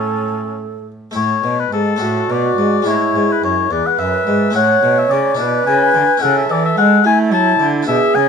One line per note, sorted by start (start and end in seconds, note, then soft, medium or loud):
0.00 0.91 A2 soft
0.00 0.95 A2 medium
0.00 1.09 A3 soft
0.00 0.72 C#4 medium
0.00 1.10 C#4 soft
0.00 1.11 E4 soft
0.00 0.87 A4 medium
1.11 1.42 A2 medium
1.11 1.95 A3 soft
1.11 1.97 E4 soft
1.16 1.41 A2 medium
1.16 1.61 C#5 medium
1.43 1.71 B2 medium
1.43 1.69 B2 medium
1.60 1.72 B4 medium
1.71 2.00 G#2 medium
1.71 1.98 G#2 medium
1.71 2.33 A4 medium
1.96 2.28 A2 medium
1.96 2.81 A3 medium
1.96 2.82 D4 soft
1.96 2.83 F#4 soft
2.01 2.27 A2 medium
2.01 2.87 F#4 medium
2.29 2.56 B2 medium
2.29 2.55 B2 medium
2.29 2.90 D5 medium
2.57 2.85 G#2 medium
2.57 2.84 G#2 medium
2.82 3.14 A2 medium
2.82 4.49 G#3 soft
2.82 4.50 D4 medium
2.82 3.70 E4 medium
2.82 4.51 E4 medium
2.87 3.12 A2 medium
2.87 3.34 C#5 medium
3.15 3.23 G#2 medium
3.15 3.40 G#2 medium
3.32 3.44 B4 medium
3.42 3.70 F#2 medium
3.42 3.68 F#2 medium
3.42 3.73 C#5 medium
3.71 3.79 E2 medium
3.71 3.96 E2 medium
3.71 4.54 B4 medium
3.71 3.88 D5 medium
3.87 4.00 F#5 medium
3.99 4.26 F#2 medium
3.99 4.24 F#2 medium
3.99 4.55 E5 medium
4.27 4.54 G#2 medium
4.27 4.52 G#2 medium
4.50 5.34 A3 medium
4.50 5.34 C#4 medium
4.50 5.35 E4 medium
4.55 4.80 A2 medium
4.55 4.82 A2 medium
4.55 5.37 C#5 medium
4.55 5.00 F#5 loud
4.83 5.08 B2 medium
4.83 5.10 B2 medium
4.99 5.12 E5 medium
5.10 5.37 C#3 medium
5.10 5.36 C#3 medium
5.10 5.66 D5 medium
5.35 5.66 B2 medium
5.35 6.18 D4 medium
5.35 6.18 E4 medium
5.39 5.64 B2 medium
5.39 6.21 B4 medium
5.66 5.94 C#3 medium
5.66 5.92 C#3 medium
5.66 6.24 G#5 loud
5.94 6.02 D3 medium
5.94 6.19 D3 medium
6.17 7.81 C#4 medium
6.17 7.82 E4 medium
6.22 6.49 C#3 medium
6.22 6.47 C#3 medium
6.22 7.07 A4 medium
6.22 6.36 F#5 loud
6.37 6.53 E5 medium
6.49 6.75 E3 medium
6.49 6.77 E3 medium
6.49 6.65 D5 loud
6.66 6.77 E5 medium
6.77 7.05 G#3 medium
6.77 7.02 G#3 medium
6.77 7.05 F#5 loud
7.04 7.29 A3 medium
7.04 7.33 A3 medium
7.04 7.87 E4 medium
7.04 7.19 G#5 loud
7.32 7.57 F#3 medium
7.32 7.59 F#3 medium
7.32 7.68 A5 loud
7.59 7.87 D3 medium
7.59 7.85 D3 medium
7.82 8.29 D4 medium
7.82 8.29 E4 medium
7.87 8.12 B2 medium
7.87 7.96 B2 medium
7.87 8.29 G#4 medium
7.87 8.17 E5 loud
8.15 8.29 C#3 medium
8.15 8.29 G#5 loud